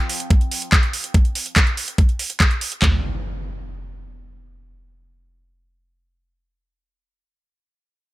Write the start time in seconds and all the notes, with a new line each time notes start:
0.10 open hi-hat
0.20 closed hi-hat
0.30 kick, closed hi-hat
0.41 closed hi-hat
0.51 open hi-hat
0.62 closed hi-hat
0.72 kick, clap, closed hi-hat
0.83 closed hi-hat
0.93 open hi-hat
1.04 closed hi-hat
1.14 kick, closed hi-hat
1.25 closed hi-hat
1.35 open hi-hat
1.46 closed hi-hat
1.56 kick, clap, closed hi-hat
1.67 closed hi-hat
1.77 open hi-hat
1.88 closed hi-hat
1.98 kick, closed hi-hat
2.09 closed hi-hat
2.19 open hi-hat
2.30 closed hi-hat
2.40 kick, clap, closed hi-hat
2.51 closed hi-hat
2.61 open hi-hat
2.72 closed hi-hat
2.82 kick, clap, floor tom, impact